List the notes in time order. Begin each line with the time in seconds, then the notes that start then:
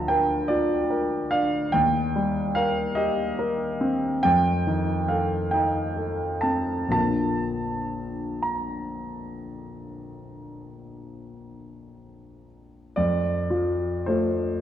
Already playing: D2 F3 D4 F4 A#4 F5 A5 A#5
0.08 A#4 G5
0.48 F4 D5
0.90 A#4
1.31 D4 F5
1.72 D#2 G5
2.16 G3
2.55 A#4 F5
2.95 G4 D#5
3.39 A#4
3.81 C4
4.23 F2 G5
4.67 D#3
5.08 A4 F5
5.51 D#4 G5
5.96 A4
6.41 C4 A5
6.88 A#1 D3 A#3 F4 A5
8.42 A#5
12.96 F2 D5
13.50 F3 F4
14.06 A3 F4 C5